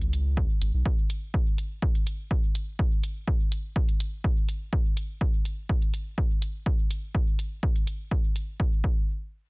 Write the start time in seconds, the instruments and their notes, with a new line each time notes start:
Already playing: sub bass C#2
0.01 closed hi-hat
0.13 closed hi-hat
0.37 kick
0.61 sub bass G#1, closed hi-hat
0.74 sub bass B1
0.86 kick
1.10 closed hi-hat
1.34 kick
1.58 closed hi-hat
1.82 kick
1.95 closed hi-hat
2.07 closed hi-hat
2.31 kick
2.55 closed hi-hat
2.79 kick
3.03 closed hi-hat
3.28 kick
3.52 closed hi-hat
3.76 kick
3.89 closed hi-hat
4.00 closed hi-hat
4.24 kick
4.49 closed hi-hat
4.73 kick
4.97 closed hi-hat
5.21 kick
5.45 closed hi-hat
5.69 kick
5.82 closed hi-hat
5.94 closed hi-hat
6.18 kick
6.42 closed hi-hat
6.66 kick
6.91 closed hi-hat
7.15 kick
7.39 closed hi-hat
7.63 kick
7.76 closed hi-hat
7.87 closed hi-hat
8.11 kick
8.36 closed hi-hat
8.60 kick
8.84 kick